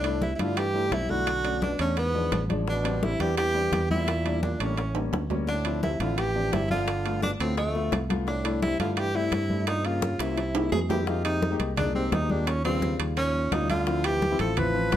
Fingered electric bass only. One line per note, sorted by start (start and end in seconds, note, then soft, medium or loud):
0.00 0.33 C2 medium
0.39 0.88 G2 medium
0.91 1.74 B1 medium
1.79 2.28 E2 medium
2.32 3.14 A1 medium
3.20 3.69 E2 medium
3.72 4.54 E2 medium
4.60 5.09 A1 medium
5.12 5.94 D2 medium
6.00 6.49 A1 medium
6.52 7.34 G1 medium
7.40 7.89 D2 medium
7.92 8.74 C2 medium
8.80 9.29 G2 medium
9.32 10.14 G2 loud
10.19 10.68 C2 medium
10.72 11.54 F2 medium
11.60 12.08 C2 medium
12.12 12.94 D#2 medium
13.00 13.48 D#2 medium
13.52 14.34 D2 medium
14.39 14.89 A1 loud
14.92 14.97 G1 medium